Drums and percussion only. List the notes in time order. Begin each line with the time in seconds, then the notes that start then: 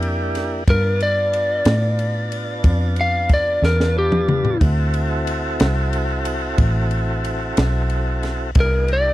0.02 ride
0.35 snare, ride
0.67 kick, ride
1.00 ride
1.33 ride
1.65 snare, ride
1.99 ride
2.32 ride
2.64 kick, ride
2.96 ride
3.29 kick, ride
3.64 snare
3.80 snare
4.12 mid tom
4.29 mid tom
4.45 floor tom
4.61 kick, ride
4.94 ride
5.27 ride
5.60 snare, ride
5.93 ride
6.25 ride
6.58 kick, ride
6.91 ride
7.24 ride
7.57 snare, ride
7.89 ride
8.23 snare, ride
8.55 kick, ride
8.88 ride